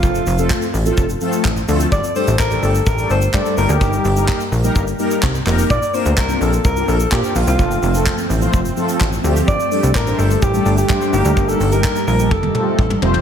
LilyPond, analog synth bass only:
\new Staff \with { instrumentName = "Analog synth bass" } { \clef bass \time 4/4 \key f \mixolydian \tempo 4 = 127 f,,8 f,,8. r16 a,,8 f,,8 r8 a,,8 d,8 | g,,16 r8 a,,16 a,,8 g,,8 a,,8 g,,8 g,16 r16 g,,16 d,16 | g,,8 g,,8. r16 bes,,8 g,,8 r8 c,8 f,,8 | bes,,16 r8 d,16 c,8 bes,,8 c,8 bes,,8 bes,16 r16 bes,,16 c,16 |
f,,8 f,,8. r16 a,,8 f,,8 r8 a,,8 d,8 | g,,16 r8 c,16 a,,8 g,,8 a,,8 g,,8 g,16 r16 g,,16 d,16 | g,,8 g,,8. r16 bes,,8 f,,8 r8 a,,8 f,,8 | }